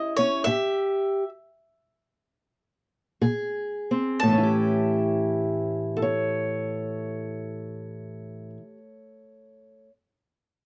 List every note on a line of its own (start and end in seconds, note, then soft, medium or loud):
0.00 0.40 E3 medium
0.00 0.17 C#4 medium
0.00 0.44 E4 medium
0.00 0.43 G4 medium
0.00 0.16 D#5 medium
0.17 0.43 C#4 medium
0.17 0.44 C#5 medium
0.44 1.22 A2 medium
0.44 1.23 G4 medium
0.44 1.29 E5 medium
3.21 4.15 A#2 medium
3.21 4.18 G#4 medium
3.91 4.19 C4 medium
4.20 8.57 A2 medium
4.20 8.50 A5 medium
4.28 8.62 E3 medium
4.33 5.96 C#4 medium
4.38 6.02 E4 medium
4.43 8.77 G4 medium
5.97 9.87 A4 medium
6.02 9.90 C#5 medium